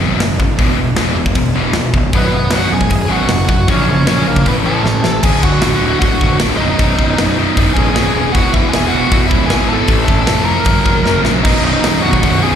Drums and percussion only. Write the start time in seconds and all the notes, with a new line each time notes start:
0.20 snare, open hi-hat
0.40 kick
0.59 kick, open hi-hat
0.97 snare, open hi-hat
1.26 kick
1.35 kick, open hi-hat
1.73 snare, open hi-hat
1.94 kick
2.13 kick, open hi-hat
2.51 snare, open hi-hat
2.81 kick
2.90 kick, open hi-hat
3.29 snare, open hi-hat
3.49 kick
3.68 kick, open hi-hat
4.07 snare, open hi-hat
4.36 kick
4.46 kick, open hi-hat
4.86 snare
5.04 snare
5.23 kick, crash
5.43 kick
5.62 snare, open hi-hat
6.02 kick, open hi-hat
6.21 kick
6.40 snare, open hi-hat
6.79 kick, open hi-hat
6.99 kick
7.18 snare, open hi-hat
7.57 kick, open hi-hat
7.77 kick
7.96 snare, open hi-hat
8.35 kick, open hi-hat
8.54 kick
8.73 snare, open hi-hat
9.12 kick, open hi-hat
9.31 kick
9.50 snare, open hi-hat
9.88 kick, open hi-hat
10.08 kick
10.27 snare, open hi-hat
10.65 kick, open hi-hat
10.86 kick
11.06 snare
11.25 snare
11.45 kick, crash
11.84 snare, open hi-hat
12.13 kick
12.23 kick, open hi-hat